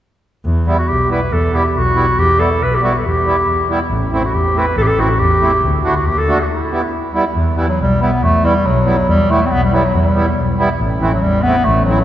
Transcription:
0.45 0.71 E2 medium
0.66 0.77 G3 medium
0.66 0.77 B3 soft
0.66 0.77 E4 medium
0.66 0.78 E4 medium
0.79 0.90 F#4 medium
0.88 1.14 B1 medium
0.88 1.09 G4 medium
1.09 1.20 G3 medium
1.09 1.20 B3 medium
1.09 1.20 E4 medium
1.09 1.34 B4 medium
1.31 1.57 E2 medium
1.31 1.57 A4 medium
1.52 1.63 G3 medium
1.52 1.63 B3 soft
1.52 1.64 E4 medium
1.52 1.67 G4 medium
1.67 1.79 G4 medium
1.75 2.00 B1 medium
1.75 2.21 F#4 medium
1.94 2.05 G3 medium
1.94 2.06 B3 medium
1.94 2.06 E4 medium
2.17 2.43 E2 medium
2.17 2.41 G4 medium
2.37 2.49 G3 medium
2.37 2.49 B3 medium
2.37 2.50 E4 medium
2.37 2.64 A4 medium
2.61 2.86 B1 medium
2.61 2.77 B4 medium
2.75 2.84 G4 medium
2.80 2.92 G3 soft
2.80 2.92 B3 medium
2.80 2.93 E4 medium
2.84 2.97 F#4 medium
2.98 3.08 A4 soft
3.04 3.29 E2 medium
3.04 3.70 G4 medium
3.25 3.35 G3 soft
3.25 3.36 B3 soft
3.25 3.36 E4 medium
3.46 3.72 E2 medium
3.69 3.79 G3 medium
3.69 3.80 B3 medium
3.69 3.80 E4 medium
3.91 4.16 A1 medium
4.11 4.22 A3 medium
4.11 4.23 C4 medium
4.11 4.23 E4 medium
4.11 4.27 E4 medium
4.26 4.36 F#4 medium
4.33 4.59 E2 medium
4.33 4.60 G4 medium
4.54 4.65 A3 medium
4.54 4.66 C4 medium
4.54 4.66 E4 medium
4.59 4.77 B4 medium
4.77 5.03 A1 loud
4.77 4.84 A4 medium
4.83 4.89 G4 medium
4.88 5.01 A4 medium
4.96 5.08 A3 medium
4.96 5.08 C4 soft
4.96 5.09 E4 medium
4.96 5.21 F#4 medium
5.20 5.46 E2 medium
5.20 5.62 G4 medium
5.40 5.51 A3 medium
5.40 5.51 C4 medium
5.40 5.52 E4 medium
5.62 5.88 D2 medium
5.83 5.94 A3 soft
5.83 5.94 D4 soft
5.83 5.98 E4 medium
5.83 5.95 F#4 medium
5.96 6.08 F#4 medium
6.05 6.31 D#2 medium
6.05 6.20 G4 medium
6.18 6.42 A4 medium
6.27 6.38 A3 medium
6.27 6.38 D4 medium
6.27 6.39 F#4 medium
6.40 6.49 F#4 medium
6.50 7.10 E4 medium
6.70 6.81 G3 medium
6.70 6.82 B3 soft
6.70 6.82 E4 medium
7.13 7.24 G3 medium
7.13 7.24 B3 medium
7.13 7.25 E4 medium
7.35 7.61 E2 medium
7.55 7.66 E3 medium
7.55 7.66 G3 medium
7.55 7.67 B3 medium
7.55 7.68 E4 medium
7.68 7.78 F#3 medium
7.79 8.04 B1 medium
7.79 8.00 G3 medium
7.99 8.10 G3 medium
7.99 8.11 B3 soft
7.99 8.25 B3 medium
7.99 8.11 E4 medium
8.22 8.47 E2 medium
8.22 8.47 A3 medium
8.42 8.53 G3 medium
8.42 8.67 G3 medium
8.42 8.53 B3 medium
8.42 8.54 E4 medium
8.65 8.91 B1 medium
8.65 9.08 F#3 medium
8.84 8.96 G3 medium
8.84 8.96 B3 medium
8.84 8.97 E4 medium
9.08 9.33 E2 medium
9.08 9.32 G3 medium
9.29 9.39 G3 medium
9.29 9.48 A3 medium
9.29 9.40 B3 medium
9.29 9.41 E4 medium
9.46 9.53 C4 medium
9.51 9.77 B1 medium
9.51 9.62 B3 loud
9.64 9.75 G3 medium
9.72 9.94 F#3 medium
9.72 9.83 G3 medium
9.72 9.83 B3 medium
9.72 9.83 E4 medium
9.94 10.20 E2 medium
9.94 10.05 F#3 medium
10.05 10.58 G3 medium
10.14 10.25 G3 soft
10.14 10.26 B3 medium
10.14 10.27 E4 medium
10.36 10.62 B1 medium
10.57 10.69 G3 medium
10.57 10.69 B3 medium
10.57 10.69 E4 medium
10.79 11.05 A1 medium
11.00 11.11 E3 medium
11.00 11.12 A3 medium
11.00 11.12 C4 soft
11.00 11.12 E4 medium
11.12 11.23 F#3 medium
11.22 11.48 E2 medium
11.22 11.44 G3 medium
11.42 11.55 A3 medium
11.42 11.66 B3 loud
11.42 11.56 C4 medium
11.42 11.56 E4 medium
11.65 11.92 A1 loud
11.65 11.84 A3 medium
11.85 12.04 F#3 medium
11.85 11.98 A3 medium
11.85 11.99 C4 soft
11.85 11.99 E4 medium

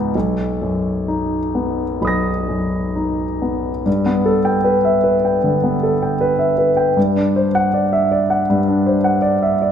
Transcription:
0.00 0.17 C#2 soft
0.00 0.17 G#2 soft
0.00 0.14 B3 soft
0.00 0.17 D#4 soft
0.15 1.98 B1 soft
0.62 1.37 F#2 soft
1.08 1.83 D#4 soft
1.55 2.30 B3 soft
2.01 3.82 B1 soft
2.01 3.83 B5 soft
2.01 3.84 D#6 soft
2.07 3.86 A#6 soft
2.48 3.24 F#2 soft
2.96 3.70 D#4 soft
3.42 3.86 B3 soft
3.86 5.39 G2 soft
4.06 4.37 B3 soft
4.26 4.57 A4 soft
4.45 4.76 G5 soft
4.64 4.96 B4 soft
4.85 5.16 E5 soft
5.04 5.35 B4 soft
5.25 5.56 G5 soft
5.44 5.75 D3 soft
5.64 5.94 B3 soft
5.83 6.13 A4 soft
6.02 6.32 G5 soft
6.21 6.51 B4 soft
6.39 6.70 E5 soft
6.58 6.89 B4 soft
6.77 6.96 G5 soft
6.97 8.45 G2 soft
7.16 7.47 D4 soft
7.36 7.66 C5 soft
7.55 7.85 F#5 soft
7.74 8.04 D5 soft
7.93 8.23 E5 soft
8.12 8.41 D5 soft
8.30 8.60 F#5 soft
8.50 9.72 G2 soft
8.68 8.97 D4 soft
8.87 9.16 C5 soft
9.04 9.34 F#5 soft
9.22 9.52 D5 soft
9.43 9.72 E5 soft
9.62 9.72 D5 soft

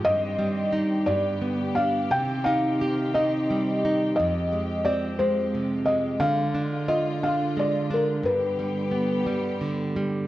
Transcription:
0.00 6.17 G4 medium
0.04 1.05 G2 medium
0.04 1.08 G2 medium
0.04 1.08 D#3 medium
0.04 1.08 C4 medium
0.04 0.69 D#5 loud
0.39 1.06 G3 medium
0.72 1.07 D#4 medium
1.06 2.09 G2 medium
1.06 2.12 B3 medium
1.06 1.79 D5 medium
1.10 2.13 D3 medium
1.42 2.10 B3 soft
1.75 2.11 D4 soft
1.75 2.09 F5 medium
2.10 4.14 C3 medium
2.10 4.17 D#3 medium
2.10 4.17 C4 medium
2.10 2.44 G5 medium
2.44 3.14 D#4 medium
2.44 3.17 F5 medium
2.82 4.14 G4 soft
3.14 3.84 D#4 medium
3.14 4.14 D#5 medium
3.51 4.17 G3 soft
3.85 4.18 D#4 medium
4.16 6.17 F2 medium
4.16 6.19 F3 medium
4.16 8.21 G#3 medium
4.16 4.87 D#5 medium
4.53 5.19 G#3 soft
4.85 6.16 C4 medium
4.85 4.92 D5 medium
5.19 5.87 G#3 medium
5.19 5.89 C5 medium
5.55 6.19 C3 soft
5.86 6.20 G#3 soft
5.86 6.18 D#5 medium
6.20 8.21 D3 medium
6.20 10.27 D3 medium
6.20 8.24 F4 medium
6.20 6.90 F5 medium
6.54 7.23 D4 soft
6.88 8.21 F4 medium
6.88 7.24 D#5 medium
7.23 7.89 D4 soft
7.23 7.58 F5 medium
7.57 8.23 G#3 soft
7.57 7.93 D5 medium
7.90 8.24 D4 medium
7.90 8.27 A#4 medium
8.23 10.27 G2 medium
8.23 10.27 B3 medium
8.23 10.27 G4 medium
8.23 9.60 B4 medium
8.59 9.26 G3 medium
8.91 10.27 B3 soft
9.27 9.95 G3 soft
9.61 10.27 D3 soft
9.96 10.27 G3 soft

